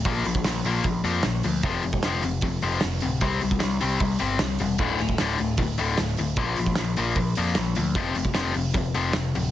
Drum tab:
CC |----------------|----------------|----------------|x---------------|
HH |o-o-o-o-o-o-o-o-|o-o-o-o-o-o-o-o-|o-o-o-o-o-o-o-o-|--o-o-o-o-o-o-o-|
SD |----o-------o---|----o-------o---|----o-------o---|----o-------o---|
BD |o--o----o-------|o--o----o-------|o--o----o-------|o--o----o-------|

CC |----------------|----------------|
HH |o-o-o-o-o-o-o-o-|o-o-o-o-o-o-o-o-|
SD |----o-------o---|----o-------o---|
BD |o--o----o-------|o--o----o-------|